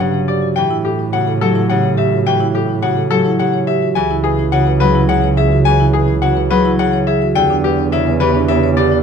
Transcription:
Already playing: double bass G2, harp D3 F#3
0.00 harp C#3, marimba G4, grand piano F#5
0.14 marimba C#5
0.28 marimba G4, grand piano D5
0.42 marimba F#4
0.56 double bass A2, harp E3, marimba G4, grand piano G5
0.71 marimba E4
0.85 grand piano G4, marimba A4
0.99 marimba E4
1.13 harp C#3, marimba F#4, grand piano F#5
1.27 marimba A4
1.41 harp F#3, marimba G4, grand piano A4
1.55 marimba E4
1.70 harp C#3, marimba G4, grand piano F#5
1.84 marimba C#5
1.98 marimba G4, grand piano E5
2.12 marimba F#4
2.26 harp E3, marimba G4, grand piano G5
2.41 marimba E4
2.55 grand piano G4, marimba A4
2.69 marimba E4
2.82 harp C#3, marimba F#4, grand piano F#5
2.97 marimba A4
3.11 harp F#3, marimba G4, grand piano A4
3.25 marimba E4
3.39 harp C#3, marimba G4, grand piano F#5
3.54 marimba C#5
3.67 marimba G4, grand piano E5
3.82 marimba F#4
3.95 double bass C#2, harp E3, marimba G#4, grand piano G#5
4.11 marimba E4
4.24 grand piano G#4, marimba B4
4.39 marimba E4
4.52 harp C#3, marimba F#4, grand piano F#5
4.67 marimba B4
4.80 harp F#3, marimba G#4, grand piano B4
4.95 marimba E4
5.09 harp C#3, marimba G#4, grand piano F#5
5.24 marimba C#5
5.37 marimba G#4, grand piano E5
5.52 marimba F#4
5.65 harp E3, marimba G#4, grand piano G#5
5.80 marimba E4
5.93 grand piano G#4, marimba B4
6.08 marimba E4
6.22 harp C#3, marimba F#4, grand piano F#5
6.37 marimba B4
6.50 harp F#3, marimba G#4, grand piano B4
6.65 marimba E4
6.79 harp C#3, marimba G#4, grand piano F#5
6.93 marimba C#5
7.07 marimba G#4, grand piano E5
7.22 marimba F#4
7.35 double bass E2, harp D3, marimba G4, grand piano G5
7.50 marimba D4
7.64 grand piano G4, marimba B4
7.79 marimba D4
7.92 harp C#3, marimba E4, grand piano E5
8.07 marimba B4
8.20 harp E3, marimba G4, grand piano B4
8.35 marimba D4
8.48 harp C#3, marimba G4, grand piano E5
8.63 marimba C#5
8.77 harp D3, marimba G4, grand piano D5
8.92 marimba E4

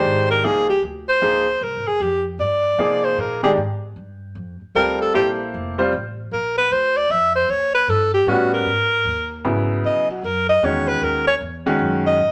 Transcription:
Already playing: upright piano D#3 G#3 D4 G4, alto saxophone C5
0.04 upright bass G#1
0.30 alto saxophone A#4
0.43 upright bass C2, upright piano F3 A#3 D#4 G#4, alto saxophone G#4
0.69 alto saxophone G4
0.82 upright bass D2
1.09 alto saxophone C5
1.22 upright bass C#2, upright piano F3 A#3 D#4 G#4
1.61 upright bass C2, alto saxophone A#4
1.75 upright bass G#1
1.87 upright bass F1, alto saxophone G#4
2.00 upright bass F2, alto saxophone G4
2.39 upright bass G2, alto saxophone D5
2.78 upright bass C3, upright piano F3 A#3 D#4 G#4
3.04 alto saxophone C5
3.18 upright bass A#2, alto saxophone A#4
3.43 upright piano D#3 G#3 D4 G4, alto saxophone G#4
3.57 upright bass G#2
3.96 upright bass G2
4.35 upright bass F2
4.61 muted upright bass stroke
4.75 upright bass D2, upright piano G3 C4 F4 A4, alto saxophone A#4
5.01 alto saxophone A4
5.14 upright bass A#1, upright piano A#3 E4 A4 C5, alto saxophone G4
5.54 upright bass F1
5.78 upright piano G3 C4 F4 C5
5.93 upright bass A1
6.31 upright bass A#1, alto saxophone A#4
6.58 alto saxophone B4
6.71 upright bass D2, alto saxophone C5
6.97 alto saxophone D5
7.10 upright bass F2, alto saxophone E5
7.35 alto saxophone C5
7.49 upright bass D#2, alto saxophone C#5
7.74 alto saxophone B4
7.88 upright bass G2, alto saxophone A4
8.14 alto saxophone G4
8.27 upright bass A2, upright piano G3 B3 C#4 F#4, alto saxophone F#4
8.53 alto saxophone A#4
8.66 upright bass G#2
9.05 upright bass D#2
9.45 upright bass G#1, upright piano C#3 F#3 B3 E4
9.84 upright bass B1, alto saxophone D#5
10.10 alto saxophone F#4
10.23 upright bass F#2, alto saxophone A#4
10.49 alto saxophone D#5
10.62 upright bass E2, upright piano D#3 G#3 C#4 F#4, alto saxophone C#5
10.88 alto saxophone B4
11.01 upright bass D#2, alto saxophone A#4
11.27 alto saxophone C#5
11.41 upright bass E2
11.66 upright piano D#3 G#3 C#4 F#4
11.79 upright bass F#2
12.07 alto saxophone D#5
12.19 upright bass G#2

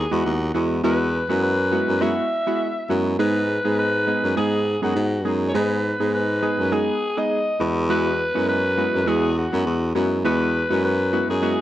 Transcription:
Already playing: alto saxophone G#4
0.11 baritone saxophone E2, synth keys G#3 B3 E4 F#4, alto saxophone F#4
0.25 baritone saxophone D#2
0.54 baritone saxophone E2, synth keys G#3 B3 E4 F#4
0.84 baritone saxophone E2, synth keys G#3 B3 E4 F#4, alto saxophone B4
1.29 baritone saxophone F#2, synth keys G#3 B3 E4 F#4
1.43 alto saxophone B4
1.72 synth keys G#3 B3 E4 F#4
1.88 baritone saxophone F#2
2.01 synth keys G#3 B3 E4 F#4, alto saxophone E5
2.47 synth keys G#3 B3 E4 F#4
2.89 baritone saxophone F#2, synth keys G#3 B3 E4 F#4
3.19 baritone saxophone G#2, synth keys G#3 B3 D#4 G#4, alto saxophone B4
3.65 baritone saxophone G#2, synth keys G#3 B3 D#4 G#4
3.79 alto saxophone B4
4.07 synth keys G#3 B3 D#4 G#4
4.23 baritone saxophone F#2
4.36 baritone saxophone G#2, synth keys G#3 B3 D#4 G#4, alto saxophone G#4
4.82 baritone saxophone F#2, synth keys G#3 B3 D#4 G#4, alto saxophone F#4
4.96 baritone saxophone G#2
5.25 baritone saxophone F#2, synth keys G#3 B3 D#4 G#4
5.49 alto saxophone C#5
5.54 baritone saxophone G#2, synth keys G#3 B3 D#4 G#4, alto saxophone B4
6.00 baritone saxophone G#2, synth keys G#3 B3 D#4 G#4
6.14 alto saxophone B4
6.42 synth keys G#3 B3 D#4 G#4
6.59 baritone saxophone F#2
6.72 synth keys G#3 B3 D#4 G#4, alto saxophone G#4
7.17 synth keys G#3 B3 D#4 G#4, alto saxophone D#5
7.60 baritone saxophone E2, synth keys G#3 B3 E4 F#4
7.89 synth keys G#3 B3 E4 F#4, alto saxophone B4
8.35 baritone saxophone F#2, synth keys G#3 B3 E4 F#4
8.49 alto saxophone B4
8.78 synth keys G#3 B3 E4 F#4
8.94 baritone saxophone F#2
9.07 baritone saxophone E2, synth keys G#3 B3 E4 F#4, alto saxophone G#4
9.38 alto saxophone F#4
9.52 baritone saxophone F#2, synth keys G#3 B3 E4 F#4
9.66 baritone saxophone E2
9.95 baritone saxophone F#2, synth keys G#3 B3 E4 F#4
10.24 baritone saxophone E2, synth keys G#3 B3 E4 F#4, alto saxophone B4
10.70 baritone saxophone F#2, synth keys G#3 B3 E4 F#4
10.84 alto saxophone B4
11.13 synth keys G#3 B3 E4 F#4
11.29 baritone saxophone F#2, alto saxophone G#4
11.42 synth keys G#3 B3 E4 F#4

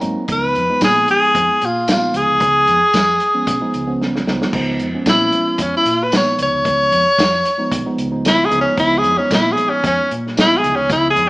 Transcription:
0.01 fingered electric bass G#2, tine electric piano F#3 A#3 C4 D#4 A#5, closed hi-hat
0.28 fingered electric bass C#2, tine electric piano F3 G#3 B3 D#4, kick, closed hi-hat
0.32 tenor saxophone B4
0.55 fingered electric bass F2, closed hi-hat
0.69 tine electric piano F3 G#3 B3 D#4
0.81 fingered electric bass A#2, tenor saxophone G#4, kick, snare, closed hi-hat, tambourine
1.08 tenor saxophone G#4, closed hi-hat
1.35 fingered electric bass F2, kick, closed hi-hat
1.62 fingered electric bass A#2, closed hi-hat
1.66 tenor saxophone F4
1.88 tine electric piano F3 G#3 B3 D#4, tenor saxophone F4, snare, closed hi-hat, tambourine
2.14 fingered electric bass C#2, tenor saxophone G#4, closed hi-hat
2.29 fingered electric bass C#2
2.40 fingered electric bass C#2, kick, closed hi-hat
2.67 fingered electric bass F2, closed hi-hat
2.83 muted fingered electric bass stroke
2.94 fingered electric bass F2, kick, snare, closed hi-hat, tambourine
3.20 closed hi-hat
3.34 tine electric piano F3 G#3 B3 C#4
3.47 fingered electric bass B1, kick, closed hi-hat
3.60 tine electric piano F3 G#3 B3 D#4
3.74 fingered electric bass C#2, closed hi-hat
3.87 tine electric piano F3 G#3 B3 C#4
4.02 snare
4.16 snare
4.27 fingered electric bass C#2, tine electric piano F3 G#3 B3 D#4, snare
4.42 snare
4.53 fingered electric bass C#2, tine electric piano F3 G#3 B3 D#4, kick, crash
4.79 fingered electric bass F2, closed hi-hat
4.94 tine electric piano F3 G#3 B3 C#4, muted fingered electric bass stroke
5.06 fingered electric bass A#2, tenor saxophone E4, kick, snare, closed hi-hat, tambourine
5.32 closed hi-hat
5.58 fingered electric bass F2, tenor saxophone C#4, kick, closed hi-hat
5.77 tenor saxophone E4
5.86 fingered electric bass A#2, closed hi-hat
6.04 tenor saxophone B4
6.12 tine electric piano F3 G#3 B3 D#4, snare, closed hi-hat, tambourine
6.17 tenor saxophone C#5
6.39 fingered electric bass C#2, tenor saxophone C#5, closed hi-hat
6.53 fingered electric bass C#2
6.65 fingered electric bass C#2, kick, closed hi-hat
6.92 fingered electric bass F2, closed hi-hat
7.06 muted fingered electric bass stroke
7.18 fingered electric bass F2, kick, snare, closed hi-hat, tambourine
7.45 closed hi-hat
7.58 tine electric piano F3 G#3 B3 D#4
7.71 fingered electric bass B1, kick, closed hi-hat
7.85 tine electric piano F3 G#3 B3 D#4
7.98 fingered electric bass C#2, closed hi-hat
8.11 tine electric piano F3 G#3 B3 D#4
8.25 tenor saxophone E4, snare, closed hi-hat, tambourine
8.45 tenor saxophone G#4
8.50 fingered electric bass C#2, tine electric piano F3 G#3 B3 D#4, closed hi-hat
8.61 tenor saxophone C#4
8.77 fingered electric bass C#2, tine electric piano F3 G#3 B3 D#4, tenor saxophone E4, kick, closed hi-hat
8.98 tenor saxophone G#4
9.04 fingered electric bass F2, closed hi-hat
9.18 tine electric piano F3 G#3 B3 D#4, tenor saxophone C#4, muted fingered electric bass stroke
9.31 fingered electric bass A#2, tenor saxophone E4, kick, snare, closed hi-hat, tambourine
9.52 tenor saxophone G#4
9.57 closed hi-hat
9.70 tenor saxophone C#4
9.84 fingered electric bass F2, tenor saxophone C#4, kick, closed hi-hat
10.11 fingered electric bass A#2, closed hi-hat
10.27 snare
10.36 tine electric piano F3 G#3 B3 D#4, snare, closed hi-hat, tambourine
10.40 tenor saxophone E4
10.57 tenor saxophone G#4
10.64 fingered electric bass C#2, closed hi-hat
10.76 fingered electric bass C#2, tenor saxophone C#4
10.90 fingered electric bass C#2, tenor saxophone E4, kick, closed hi-hat
11.10 tenor saxophone G#4
11.16 fingered electric bass F2, closed hi-hat

